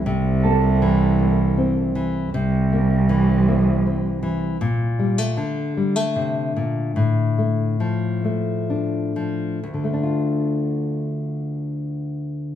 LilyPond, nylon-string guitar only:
\new Staff \with { instrumentName = "Nylon-string guitar" } { \clef bass \time 3/4 \key c \mixolydian \tempo 4 = 77 << { e'8 bes4 bes8 c'4 | r8 bes4 bes8 c'4 | r8 g16 a8. g16 a4~ a16 | r8 a4 a8 d'4 |
<d a d' f'>2. | } \\ { c4 e4. e8 | c4 e4. e8 | bes,4 d4 c8 bes,8 | a,4 f4. f8 |
d,2. | } >> }